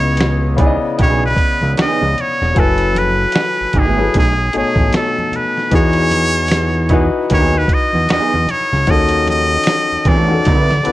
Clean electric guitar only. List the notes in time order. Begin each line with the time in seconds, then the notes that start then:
0.59 E3 B3 D#4 G#4
0.98 E3 B3 D#4 G#4
1.78 E3 B3 D#4 G#4
3.35 muted clean electric guitar stroke
3.75 A3 B3 E4 G#4
4.15 D#3 A3 C#4 G#4
6.90 F#3 B3 D#4 G#4
7.30 F#3 B3 D#4 G#4
8.10 F#3 B3 D#4 G#4
9.68 muted clean electric guitar stroke
10.06 A3 C#4 F#4 A4
10.46 F#3 C4 E4 B4